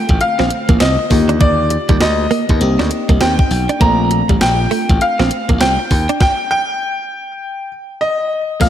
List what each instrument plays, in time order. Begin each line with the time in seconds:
Already playing: fm electric piano D3 A3 C4 F4, grand piano G5
0.09 slap bass A1, kick, closed hi-hat
0.21 grand piano F5, closed hi-hat
0.39 slap bass A#1, clean electric guitar C4, snare
0.50 muted clean electric guitar stroke, closed hi-hat
0.69 slap bass A1, clean electric guitar A#3, kick, closed hi-hat
0.80 slap bass C2, clean electric guitar C4, grand piano D#5, snare, closed hi-hat
0.99 muted clean electric guitar stroke
1.10 slap bass D#2, fm electric piano D3 A#3 F4 G4, kick, open hi-hat
1.29 clean electric guitar D4, closed hi-hat
1.41 clean electric guitar D#4, grand piano D5, kick, closed hi-hat
1.70 muted clean electric guitar stroke, closed hi-hat
1.89 slap bass D#2, clean electric guitar G3, kick, closed hi-hat
2.01 slap bass D2, grand piano D#5, snare, closed hi-hat
2.31 clean electric guitar A#3, open hi-hat
2.49 slap bass D#2, kick, closed hi-hat
2.60 slap bass C2, fm electric piano A#3 C4 D#4 G4, closed hi-hat
2.79 slap bass D2, clean electric guitar D4, snare
2.91 muted clean electric guitar stroke, closed hi-hat
3.09 slap bass C2, clean electric guitar A#3, kick, closed hi-hat
3.21 slap bass D#2, clean electric guitar C4, grand piano G5, snare, closed hi-hat
3.39 muted clean electric guitar stroke, kick
3.51 slap bass B1, open hi-hat
3.69 clean electric guitar D4, closed hi-hat
3.80 slap bass A#1, fm electric piano A3 C4 D4 F4, clean electric guitar A#3, grand piano A#5, kick, closed hi-hat
4.11 muted clean electric guitar stroke, closed hi-hat
4.29 slap bass A1, clean electric guitar G3, kick, closed hi-hat
4.41 slap bass A#1, grand piano G5, snare, closed hi-hat
4.71 clean electric guitar A3, open hi-hat
4.89 slap bass A1, kick, closed hi-hat
5.01 grand piano F5, closed hi-hat
5.19 slap bass A#1, clean electric guitar C4, snare
5.31 muted clean electric guitar stroke, closed hi-hat
5.49 slap bass A1, clean electric guitar A#3, kick, closed hi-hat
5.61 slap bass C2, clean electric guitar C4, grand piano G5, snare, closed hi-hat
5.79 muted clean electric guitar stroke
5.91 slap bass D#2, kick, open hi-hat
6.09 clean electric guitar D4, closed hi-hat
6.20 grand piano G5, kick, snare
6.51 grand piano G5
8.01 grand piano D#5
8.60 slap bass A#1, fm electric piano A3 C4 D4 F4, clean electric guitar A#3, grand piano F5, kick, closed hi-hat, crash, tambourine